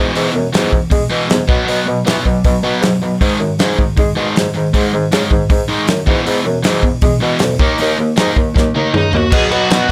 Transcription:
Already playing: E2 B2 E3
0.15 E2 G#2 B2 E3, open hi-hat
0.35 E2 F#2 B2
0.53 E2 G#2 B2 E3, snare, open hi-hat
0.72 E2 B2, kick
0.91 E2 B2 G#3, kick, open hi-hat
1.11 E2 B2 E3
1.30 E2 G#2 B2, snare, open hi-hat
1.48 B2 F#3 B3, kick
1.68 B2 F#3 B3, open hi-hat
1.88 B2 F#3
2.06 B2 E3 F#3 B3, snare, open hi-hat
2.26 B2 F#3, kick
2.44 B2 F#3, kick, open hi-hat
2.63 B2 F#3 B3
2.81 G#2 B2 F#3, snare, open hi-hat
3.02 B2 F#3
3.21 G#2 D#3 G#3, kick, open hi-hat
3.39 F#2 G#2 D#3
3.59 G#2 D#3 G#3, snare, open hi-hat
3.79 G#2 D#3, kick
3.97 G#2 D#3 G#3, kick, open hi-hat
4.16 G#2 B2 D#3 G#3
4.36 G#2 D#3, snare, open hi-hat
4.55 G#2 D#3
4.74 G#2 D#3 G#3, kick, open hi-hat
4.93 G#2 D#3
5.11 G#2 C#3 D#3 G#3, snare, open hi-hat
5.31 G#2 D#3, kick
5.50 G#2 D#3, kick, open hi-hat
5.68 G#2 D#3 G#3
5.87 F#2 G#2 D#3, snare, open hi-hat
6.07 E2 G#2 B2 E3, kick
6.26 E2 G#2 B2 E3, open hi-hat
6.45 E2 F#2 B2
6.64 E2 G#2 B2 E3, snare, open hi-hat
6.83 E2 B2, kick
7.01 E2 B2 G#3, kick, open hi-hat
7.21 E2 B2 E3
7.39 D2 E2 B2, snare, open hi-hat
7.59 D#2 D#3 A#3 D#4, kick
7.78 D#2 D#3 A#3 D#4, open hi-hat
7.99 D#2 D#3 A#3
8.16 G#2 D#3 A#3 D#4, snare, open hi-hat
8.36 D#2 D#3 A#3, kick
8.56 D#2 D#3 A#3, kick, snare
8.76 D#2 D#3 A#3 D#4, high tom
8.94 C#2 D#3 A#3 D#4 D#5, mid tom
9.13 D#2 D#3 A#3 F#4 F#5, floor tom
9.32 B2 F#3 B3 D#4 G#4, kick, crash
9.36 G#5
9.51 B2 F#3 B3 D#4 F#4 F#5, crash
9.70 B2 F#3 B3 D#4, snare, crash
9.87 B2 F#3 B3 D#4

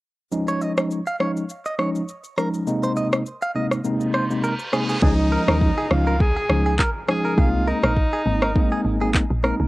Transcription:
0.32 F3 G#3 C#4 D#4, shaker
0.48 C#5, shaker
0.61 D#5, shaker
0.77 F3 G#3 C#4 D#4, cross-stick, shaker
0.91 shaker
1.07 F5, shaker
1.20 F3 G#3 C#4 D#4 C#5, cross-stick
1.37 shaker
1.49 shaker
1.66 D#5, shaker
1.79 F3 G#3 C#4 D#4 C#5, cross-stick
1.95 shaker
2.08 shaker
2.24 shaker
2.37 F3 G#3 C#4 D#4 A#4, cross-stick, shaker
2.54 shaker
2.67 C3 G#3 A#3 C4 D#4, shaker
2.83 C5, shaker
2.96 D#5, shaker
3.12 cross-stick, shaker
3.26 shaker
3.42 F5, shaker
3.55 C3 G#3 A#3 C4 D#4 D#5
3.71 cross-stick, shaker
3.85 C3 G#3 A#3 C4 D#4, reverse cymbal, shaker
4.01 shaker
4.14 C5, cross-stick
4.30 C3 G#3 A#3 C4 D#4, shaker
4.44 A#4, shaker
4.59 shaker
4.73 C3 G#3 A#3 C4 D#4 G#4, cross-stick, shaker
4.89 G#4, shaker
5.02 C#2 F3 G#3 C#4 D#4 G#4, kick, downlifter
5.32 A#4
5.48 D#2 F3 G#3 C#4 D#4 A#4, cross-stick
5.61 kick
5.78 G#4
5.90 C#2 F3 G#3 C#4 D#4 F4, cross-stick
6.07 A#4
6.20 G#4, kick
6.37 G#4
6.49 C#2 F3 G#3 C#4 D#4, cross-stick
6.66 G#4
6.79 A#4, kick, clap
7.08 F3 G#3 C#4 D#4 G#4, cross-stick
7.25 A#4
7.37 C2 G#3 A#3 C4 D#4 F4 G#4, kick
7.67 D#4 A#4
7.83 A#1 A#4, cross-stick
7.97 kick
8.13 G#4
8.26 G#1 G#3 A#3 C4 D#4
8.42 A#4, cross-stick
8.55 G#3 A#3 C4 D#4, kick
8.72 G#4
8.85 G#1
9.01 G#3 A#3 C4 D#4 G#4
9.14 kick, clap
9.30 A#1
9.43 G#3 A#3 C4 D#4 A#4, cross-stick
9.60 C2

